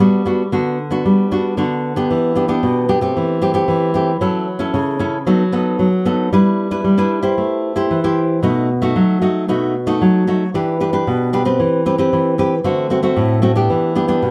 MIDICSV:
0, 0, Header, 1, 2, 480
1, 0, Start_track
1, 0, Key_signature, 1, "minor"
1, 0, Tempo, 526778
1, 1, Time_signature, 4, 2, 24, 8
1, 13037, End_track
2, 0, Start_track
2, 0, Title_t, "Nylon-string guitar"
2, 0, Program_c, 0, 24
2, 0, Note_on_c, 0, 55, 62
2, 0, Note_on_c, 0, 59, 52
2, 3, Note_on_c, 0, 66, 54
2, 5, Note_on_c, 0, 62, 54
2, 200, Note_off_c, 0, 59, 0
2, 201, Note_off_c, 0, 62, 0
2, 203, Note_off_c, 0, 66, 0
2, 232, Note_on_c, 0, 59, 52
2, 240, Note_on_c, 0, 62, 48
2, 243, Note_on_c, 0, 66, 56
2, 378, Note_off_c, 0, 59, 0
2, 382, Note_off_c, 0, 62, 0
2, 382, Note_off_c, 0, 66, 0
2, 454, Note_off_c, 0, 55, 0
2, 476, Note_on_c, 0, 50, 71
2, 479, Note_on_c, 0, 59, 51
2, 484, Note_on_c, 0, 62, 49
2, 484, Note_on_c, 0, 66, 59
2, 704, Note_off_c, 0, 59, 0
2, 705, Note_off_c, 0, 62, 0
2, 707, Note_off_c, 0, 66, 0
2, 825, Note_on_c, 0, 59, 52
2, 832, Note_on_c, 0, 62, 55
2, 836, Note_on_c, 0, 66, 63
2, 935, Note_off_c, 0, 50, 0
2, 960, Note_on_c, 0, 55, 63
2, 1155, Note_off_c, 0, 59, 0
2, 1158, Note_off_c, 0, 62, 0
2, 1160, Note_off_c, 0, 66, 0
2, 1197, Note_on_c, 0, 59, 53
2, 1201, Note_on_c, 0, 62, 56
2, 1203, Note_on_c, 0, 66, 56
2, 1401, Note_off_c, 0, 59, 0
2, 1402, Note_off_c, 0, 62, 0
2, 1403, Note_off_c, 0, 66, 0
2, 1417, Note_off_c, 0, 55, 0
2, 1432, Note_on_c, 0, 59, 47
2, 1433, Note_on_c, 0, 50, 64
2, 1438, Note_on_c, 0, 62, 52
2, 1443, Note_on_c, 0, 66, 49
2, 1758, Note_off_c, 0, 59, 0
2, 1761, Note_off_c, 0, 62, 0
2, 1763, Note_off_c, 0, 66, 0
2, 1788, Note_on_c, 0, 59, 53
2, 1794, Note_on_c, 0, 62, 51
2, 1795, Note_on_c, 0, 67, 62
2, 1893, Note_off_c, 0, 50, 0
2, 1919, Note_on_c, 0, 52, 70
2, 2117, Note_off_c, 0, 59, 0
2, 2118, Note_off_c, 0, 62, 0
2, 2120, Note_off_c, 0, 67, 0
2, 2146, Note_on_c, 0, 59, 53
2, 2152, Note_on_c, 0, 62, 53
2, 2155, Note_on_c, 0, 67, 54
2, 2235, Note_off_c, 0, 59, 0
2, 2238, Note_off_c, 0, 62, 0
2, 2239, Note_off_c, 0, 67, 0
2, 2262, Note_on_c, 0, 59, 59
2, 2267, Note_on_c, 0, 62, 63
2, 2269, Note_on_c, 0, 67, 60
2, 2376, Note_off_c, 0, 52, 0
2, 2396, Note_on_c, 0, 47, 68
2, 2594, Note_off_c, 0, 59, 0
2, 2595, Note_off_c, 0, 62, 0
2, 2597, Note_off_c, 0, 67, 0
2, 2630, Note_on_c, 0, 59, 58
2, 2635, Note_on_c, 0, 62, 51
2, 2635, Note_on_c, 0, 67, 63
2, 2717, Note_off_c, 0, 59, 0
2, 2719, Note_off_c, 0, 62, 0
2, 2720, Note_off_c, 0, 67, 0
2, 2745, Note_on_c, 0, 57, 57
2, 2753, Note_on_c, 0, 60, 58
2, 2754, Note_on_c, 0, 67, 63
2, 2854, Note_off_c, 0, 47, 0
2, 2885, Note_on_c, 0, 52, 59
2, 3076, Note_off_c, 0, 57, 0
2, 3077, Note_off_c, 0, 60, 0
2, 3079, Note_off_c, 0, 67, 0
2, 3112, Note_on_c, 0, 57, 59
2, 3115, Note_on_c, 0, 60, 62
2, 3120, Note_on_c, 0, 67, 63
2, 3198, Note_off_c, 0, 57, 0
2, 3200, Note_off_c, 0, 60, 0
2, 3202, Note_off_c, 0, 67, 0
2, 3224, Note_on_c, 0, 57, 62
2, 3226, Note_on_c, 0, 60, 51
2, 3232, Note_on_c, 0, 67, 68
2, 3339, Note_off_c, 0, 52, 0
2, 3353, Note_on_c, 0, 52, 66
2, 3554, Note_off_c, 0, 57, 0
2, 3554, Note_off_c, 0, 60, 0
2, 3558, Note_off_c, 0, 67, 0
2, 3589, Note_on_c, 0, 57, 57
2, 3593, Note_on_c, 0, 60, 55
2, 3601, Note_on_c, 0, 67, 60
2, 3736, Note_off_c, 0, 57, 0
2, 3739, Note_off_c, 0, 60, 0
2, 3741, Note_off_c, 0, 67, 0
2, 3813, Note_off_c, 0, 52, 0
2, 3834, Note_on_c, 0, 54, 66
2, 3836, Note_on_c, 0, 61, 53
2, 3841, Note_on_c, 0, 64, 57
2, 3843, Note_on_c, 0, 69, 54
2, 4063, Note_off_c, 0, 61, 0
2, 4065, Note_off_c, 0, 64, 0
2, 4067, Note_off_c, 0, 69, 0
2, 4182, Note_on_c, 0, 61, 56
2, 4187, Note_on_c, 0, 64, 57
2, 4194, Note_on_c, 0, 69, 64
2, 4294, Note_off_c, 0, 54, 0
2, 4317, Note_on_c, 0, 49, 72
2, 4514, Note_off_c, 0, 61, 0
2, 4515, Note_off_c, 0, 64, 0
2, 4519, Note_off_c, 0, 69, 0
2, 4550, Note_on_c, 0, 61, 59
2, 4558, Note_on_c, 0, 64, 60
2, 4558, Note_on_c, 0, 69, 62
2, 4711, Note_off_c, 0, 61, 0
2, 4713, Note_off_c, 0, 64, 0
2, 4714, Note_off_c, 0, 69, 0
2, 4775, Note_off_c, 0, 49, 0
2, 4798, Note_on_c, 0, 54, 65
2, 4800, Note_on_c, 0, 59, 53
2, 4803, Note_on_c, 0, 63, 52
2, 4805, Note_on_c, 0, 69, 55
2, 4941, Note_off_c, 0, 59, 0
2, 4944, Note_off_c, 0, 63, 0
2, 4944, Note_off_c, 0, 69, 0
2, 5034, Note_on_c, 0, 59, 62
2, 5038, Note_on_c, 0, 63, 58
2, 5041, Note_on_c, 0, 69, 62
2, 5256, Note_off_c, 0, 54, 0
2, 5278, Note_on_c, 0, 54, 66
2, 5347, Note_off_c, 0, 59, 0
2, 5348, Note_off_c, 0, 63, 0
2, 5350, Note_off_c, 0, 69, 0
2, 5517, Note_on_c, 0, 59, 54
2, 5521, Note_on_c, 0, 63, 55
2, 5524, Note_on_c, 0, 69, 62
2, 5721, Note_off_c, 0, 59, 0
2, 5723, Note_off_c, 0, 63, 0
2, 5724, Note_off_c, 0, 69, 0
2, 5736, Note_off_c, 0, 54, 0
2, 5764, Note_on_c, 0, 55, 69
2, 5765, Note_on_c, 0, 62, 52
2, 5768, Note_on_c, 0, 64, 58
2, 5773, Note_on_c, 0, 71, 62
2, 6084, Note_off_c, 0, 62, 0
2, 6087, Note_off_c, 0, 64, 0
2, 6088, Note_off_c, 0, 71, 0
2, 6115, Note_on_c, 0, 62, 60
2, 6116, Note_on_c, 0, 64, 58
2, 6119, Note_on_c, 0, 71, 65
2, 6219, Note_off_c, 0, 55, 0
2, 6235, Note_on_c, 0, 55, 65
2, 6320, Note_off_c, 0, 62, 0
2, 6320, Note_off_c, 0, 64, 0
2, 6322, Note_off_c, 0, 71, 0
2, 6357, Note_on_c, 0, 62, 63
2, 6361, Note_on_c, 0, 64, 59
2, 6365, Note_on_c, 0, 71, 67
2, 6561, Note_off_c, 0, 62, 0
2, 6563, Note_off_c, 0, 64, 0
2, 6565, Note_off_c, 0, 71, 0
2, 6584, Note_on_c, 0, 64, 59
2, 6589, Note_on_c, 0, 67, 54
2, 6592, Note_on_c, 0, 72, 66
2, 6695, Note_off_c, 0, 55, 0
2, 6721, Note_on_c, 0, 57, 59
2, 7035, Note_off_c, 0, 64, 0
2, 7036, Note_off_c, 0, 67, 0
2, 7039, Note_off_c, 0, 72, 0
2, 7068, Note_on_c, 0, 64, 60
2, 7073, Note_on_c, 0, 67, 58
2, 7076, Note_on_c, 0, 72, 66
2, 7178, Note_off_c, 0, 57, 0
2, 7204, Note_on_c, 0, 52, 63
2, 7277, Note_off_c, 0, 64, 0
2, 7280, Note_off_c, 0, 67, 0
2, 7280, Note_off_c, 0, 72, 0
2, 7326, Note_on_c, 0, 64, 60
2, 7328, Note_on_c, 0, 67, 66
2, 7330, Note_on_c, 0, 72, 65
2, 7646, Note_off_c, 0, 64, 0
2, 7646, Note_off_c, 0, 67, 0
2, 7648, Note_off_c, 0, 72, 0
2, 7660, Note_off_c, 0, 52, 0
2, 7677, Note_on_c, 0, 47, 67
2, 7682, Note_on_c, 0, 57, 56
2, 7687, Note_on_c, 0, 63, 59
2, 7687, Note_on_c, 0, 66, 59
2, 7907, Note_off_c, 0, 57, 0
2, 7908, Note_off_c, 0, 63, 0
2, 7910, Note_off_c, 0, 66, 0
2, 8034, Note_on_c, 0, 57, 61
2, 8038, Note_on_c, 0, 63, 59
2, 8045, Note_on_c, 0, 66, 65
2, 8137, Note_off_c, 0, 47, 0
2, 8163, Note_on_c, 0, 54, 68
2, 8362, Note_off_c, 0, 57, 0
2, 8362, Note_off_c, 0, 63, 0
2, 8363, Note_off_c, 0, 66, 0
2, 8397, Note_on_c, 0, 57, 55
2, 8401, Note_on_c, 0, 63, 55
2, 8407, Note_on_c, 0, 66, 57
2, 8602, Note_off_c, 0, 57, 0
2, 8604, Note_off_c, 0, 63, 0
2, 8606, Note_off_c, 0, 66, 0
2, 8619, Note_off_c, 0, 54, 0
2, 8642, Note_on_c, 0, 47, 62
2, 8647, Note_on_c, 0, 57, 50
2, 8647, Note_on_c, 0, 63, 51
2, 8654, Note_on_c, 0, 66, 58
2, 8868, Note_off_c, 0, 57, 0
2, 8871, Note_off_c, 0, 63, 0
2, 8873, Note_off_c, 0, 66, 0
2, 8992, Note_on_c, 0, 57, 67
2, 8995, Note_on_c, 0, 63, 61
2, 8999, Note_on_c, 0, 66, 62
2, 9100, Note_off_c, 0, 47, 0
2, 9126, Note_on_c, 0, 54, 64
2, 9319, Note_off_c, 0, 57, 0
2, 9321, Note_off_c, 0, 63, 0
2, 9322, Note_off_c, 0, 66, 0
2, 9361, Note_on_c, 0, 57, 54
2, 9366, Note_on_c, 0, 63, 59
2, 9371, Note_on_c, 0, 66, 55
2, 9504, Note_off_c, 0, 57, 0
2, 9506, Note_off_c, 0, 63, 0
2, 9508, Note_off_c, 0, 66, 0
2, 9581, Note_off_c, 0, 54, 0
2, 9607, Note_on_c, 0, 52, 65
2, 9611, Note_on_c, 0, 62, 53
2, 9613, Note_on_c, 0, 67, 58
2, 9613, Note_on_c, 0, 71, 62
2, 9809, Note_off_c, 0, 62, 0
2, 9809, Note_off_c, 0, 67, 0
2, 9810, Note_off_c, 0, 71, 0
2, 9845, Note_on_c, 0, 62, 52
2, 9849, Note_on_c, 0, 67, 53
2, 9853, Note_on_c, 0, 71, 66
2, 9927, Note_off_c, 0, 62, 0
2, 9927, Note_off_c, 0, 67, 0
2, 9930, Note_off_c, 0, 71, 0
2, 9958, Note_on_c, 0, 62, 56
2, 9961, Note_on_c, 0, 67, 54
2, 9966, Note_on_c, 0, 71, 65
2, 10062, Note_off_c, 0, 52, 0
2, 10089, Note_on_c, 0, 47, 73
2, 10282, Note_off_c, 0, 62, 0
2, 10285, Note_off_c, 0, 67, 0
2, 10285, Note_off_c, 0, 71, 0
2, 10324, Note_on_c, 0, 62, 57
2, 10328, Note_on_c, 0, 67, 63
2, 10332, Note_on_c, 0, 71, 66
2, 10405, Note_off_c, 0, 62, 0
2, 10408, Note_off_c, 0, 67, 0
2, 10410, Note_off_c, 0, 71, 0
2, 10436, Note_on_c, 0, 60, 62
2, 10440, Note_on_c, 0, 67, 59
2, 10444, Note_on_c, 0, 71, 61
2, 10543, Note_off_c, 0, 47, 0
2, 10566, Note_on_c, 0, 52, 62
2, 10761, Note_off_c, 0, 60, 0
2, 10763, Note_off_c, 0, 67, 0
2, 10766, Note_off_c, 0, 71, 0
2, 10805, Note_on_c, 0, 60, 61
2, 10809, Note_on_c, 0, 67, 58
2, 10809, Note_on_c, 0, 71, 57
2, 10886, Note_off_c, 0, 60, 0
2, 10887, Note_off_c, 0, 67, 0
2, 10888, Note_off_c, 0, 71, 0
2, 10920, Note_on_c, 0, 60, 64
2, 10926, Note_on_c, 0, 67, 57
2, 10929, Note_on_c, 0, 71, 68
2, 11021, Note_off_c, 0, 52, 0
2, 11052, Note_on_c, 0, 52, 66
2, 11244, Note_off_c, 0, 60, 0
2, 11245, Note_off_c, 0, 67, 0
2, 11248, Note_off_c, 0, 71, 0
2, 11282, Note_on_c, 0, 60, 56
2, 11290, Note_on_c, 0, 67, 57
2, 11291, Note_on_c, 0, 71, 66
2, 11425, Note_off_c, 0, 60, 0
2, 11426, Note_off_c, 0, 67, 0
2, 11429, Note_off_c, 0, 71, 0
2, 11504, Note_off_c, 0, 52, 0
2, 11520, Note_on_c, 0, 50, 62
2, 11521, Note_on_c, 0, 57, 55
2, 11526, Note_on_c, 0, 60, 62
2, 11530, Note_on_c, 0, 66, 60
2, 11723, Note_off_c, 0, 57, 0
2, 11727, Note_off_c, 0, 60, 0
2, 11728, Note_off_c, 0, 66, 0
2, 11756, Note_on_c, 0, 57, 57
2, 11762, Note_on_c, 0, 60, 54
2, 11766, Note_on_c, 0, 66, 57
2, 11832, Note_off_c, 0, 57, 0
2, 11835, Note_off_c, 0, 60, 0
2, 11837, Note_off_c, 0, 66, 0
2, 11869, Note_on_c, 0, 57, 61
2, 11874, Note_on_c, 0, 60, 60
2, 11878, Note_on_c, 0, 66, 63
2, 11978, Note_off_c, 0, 50, 0
2, 11996, Note_on_c, 0, 45, 76
2, 12198, Note_off_c, 0, 57, 0
2, 12201, Note_off_c, 0, 60, 0
2, 12203, Note_off_c, 0, 66, 0
2, 12227, Note_on_c, 0, 57, 56
2, 12233, Note_on_c, 0, 60, 60
2, 12237, Note_on_c, 0, 66, 64
2, 12308, Note_off_c, 0, 57, 0
2, 12310, Note_off_c, 0, 60, 0
2, 12313, Note_off_c, 0, 66, 0
2, 12351, Note_on_c, 0, 59, 59
2, 12355, Note_on_c, 0, 62, 63
2, 12362, Note_on_c, 0, 67, 66
2, 12456, Note_off_c, 0, 45, 0
2, 12482, Note_on_c, 0, 52, 67
2, 12679, Note_off_c, 0, 59, 0
2, 12682, Note_off_c, 0, 62, 0
2, 12683, Note_off_c, 0, 67, 0
2, 12716, Note_on_c, 0, 59, 59
2, 12720, Note_on_c, 0, 62, 59
2, 12724, Note_on_c, 0, 67, 67
2, 12801, Note_off_c, 0, 59, 0
2, 12804, Note_off_c, 0, 62, 0
2, 12806, Note_off_c, 0, 67, 0
2, 12830, Note_on_c, 0, 59, 58
2, 12835, Note_on_c, 0, 62, 61
2, 12836, Note_on_c, 0, 67, 64
2, 12939, Note_off_c, 0, 52, 0
2, 12961, Note_on_c, 0, 47, 65
2, 13037, Note_off_c, 0, 47, 0
2, 13037, Note_off_c, 0, 59, 0
2, 13037, Note_off_c, 0, 62, 0
2, 13037, Note_off_c, 0, 67, 0
2, 13037, End_track
0, 0, End_of_file